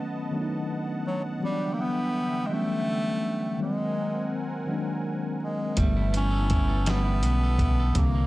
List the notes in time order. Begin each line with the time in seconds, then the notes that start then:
Already playing: D#3 F#3 A3 B3 C#4 D#5 F#5 A5
0.31 D#3 F#3 A3 B3
0.35 D4
0.42 D#4
1.07 F#3
1.40 D3 E3 F#3 G3 B3 E5 G5
1.44 G3 C#4
1.50 D4
1.74 A#3
1.81 B3
2.47 E3 G#3
2.51 F#3 G3 A3 B3 C#4
3.58 D#3 F#3 G#3 A#3 C4 A#4 F#5 G#5
3.62 G#3 C4
4.66 D#3 F#3 G#3 A#3
4.71 D4
5.43 G#3
5.76 G1 D3 E3 G3 A3 B3 E4 B4 G5 A5, kick, closed hi-hat
5.80 A3
5.96 E4
6.12 B3, closed hi-hat
6.17 C#4
6.31 A4
6.50 E4, kick, closed hi-hat
6.68 A4
6.85 D3 E3 G3 A3, snare, closed hi-hat
6.89 B3 C#4
7.05 E4
7.23 B1 B3, closed hi-hat
7.43 A4
7.59 B1 E4, kick, closed hi-hat
7.80 A4
7.94 C2 C3 D3 E3 G3 A#3 D4 C5 E5 A#5, kick, closed hi-hat
7.98 A#3 C4
8.15 A#3